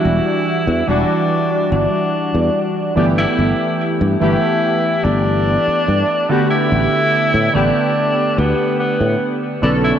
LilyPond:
<<
  \new Staff \with { instrumentName = "Tenor saxophone" } { \time 4/4 \key a \mixolydian \tempo 4 = 72 e'4 d'4 d'4. d'16 e'16~ | e'8. r16 e'4 d'4. fis'16 e'16~ | e'4 d'4 b8 b8. r16 d'16 e'16 | }
  \new Staff \with { instrumentName = "Synth keys" } { \time 4/4 \key a \mixolydian <e g d' fis'>4 <e g d' fis'>2~ <e g d' fis'>8 <e a b g'>8~ | <e a b g'>4 <e a b g'>2~ <e a b g'>8 <d a b g'>8~ | <d a b g'>4 <d a b g'>2~ <d a b g'>8 <d b cis' a'>8 | }
  \new Staff \with { instrumentName = "Fretless electric bass" } { \clef bass \time 4/4 \key a \mixolydian e,,16 r8 e,16 e,,16 r8. g,,16 r8 e,16 r8 g,,16 r16 | g,,16 r8 g,16 g,,16 r8. g,,8 r8 g,16 r8. | a,,16 r8 a,16 a,,16 r8. d,16 r8 a,16 r8 b,,16 r16 | }
>>